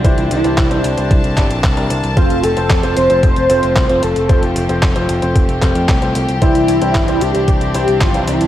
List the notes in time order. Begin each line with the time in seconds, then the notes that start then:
Already playing: D3 C4 D4
0.04 C2 D4 E4 G4 C5 A5, kick, closed hi-hat
0.18 C2, closed hi-hat
0.31 C2 E4, closed hi-hat
0.44 C2 D4 E4 G4 C5, closed hi-hat
0.58 C2, kick, clap, closed hi-hat
0.71 C2 D4 E4 G4 C5, closed hi-hat
0.84 C2, closed hi-hat
0.97 C2 D4 E4 G4 C5, closed hi-hat
1.11 C2, kick, closed hi-hat
1.24 C2, closed hi-hat
1.37 G1 D4 E4 G4 E5, kick, clap, closed hi-hat
1.51 A#1, closed hi-hat
1.64 C2, kick, clap, closed hi-hat
1.77 C2 D4 E4 G4 A#4, closed hi-hat
1.90 C2, closed hi-hat
2.04 C2, closed hi-hat
2.17 F1 F3 A3 C4 F4 A4 C5, kick, closed hi-hat
2.30 F1, closed hi-hat
2.43 F1 A4, closed hi-hat
2.57 F1 C4 F4 A4 C5, closed hi-hat
2.70 F2, kick, clap, closed hi-hat
2.83 F1 C4 F4 A4 C5, closed hi-hat
2.96 F1 C5, closed hi-hat
3.10 F1 C4 F4 A4 C5, closed hi-hat
3.23 C5, kick, closed hi-hat
3.36 F1, closed hi-hat
3.50 F1 C4 F4 A4 C5, closed hi-hat
3.63 F1, closed hi-hat
3.76 C2, kick, clap, closed hi-hat
3.89 F1 C4 F4 A4 C5, closed hi-hat
4.03 F1 A4, closed hi-hat
4.16 F1, closed hi-hat
4.29 F1 C4 F4 G4 A4 C5, kick, closed hi-hat
4.43 F1, closed hi-hat
4.56 F1, closed hi-hat
4.69 F1 C4 F4 A4 C5, closed hi-hat
4.82 F1, kick, clap, closed hi-hat
4.96 F1 C4 F4 A4 C5, closed hi-hat
5.09 F1, closed hi-hat
5.22 F1 C4 F4 A4 C5, closed hi-hat
5.36 F1, kick, closed hi-hat
5.49 F1, closed hi-hat
5.62 F1 C4 F4 A4 C5, kick, clap, closed hi-hat
5.75 F2, closed hi-hat
5.89 C2, kick, clap, closed hi-hat
6.02 C2 C4 F4 A4 C5, closed hi-hat
6.15 C2, closed hi-hat
6.28 C2, closed hi-hat
6.42 C2 E3 C4 D4 E4 G4 C5, kick, closed hi-hat
6.55 C2, closed hi-hat
6.68 C2, closed hi-hat
6.81 C2 D4 E4 G4 C5, closed hi-hat
6.95 G1, kick, clap, closed hi-hat
7.08 C2 D4 E4 G4 C5, closed hi-hat
7.21 C2 G4, closed hi-hat
7.35 C2 D4 E4 G4 C5, closed hi-hat
7.48 C2 G4, kick, closed hi-hat
7.61 C2, closed hi-hat
7.74 C2 D4 E4 G4 C5, closed hi-hat
7.88 C2, closed hi-hat
8.01 G1 F4, kick, clap, closed hi-hat
8.14 C2 D4 E4 G4 C5, closed hi-hat
8.27 C2 E4, closed hi-hat
8.41 C2, closed hi-hat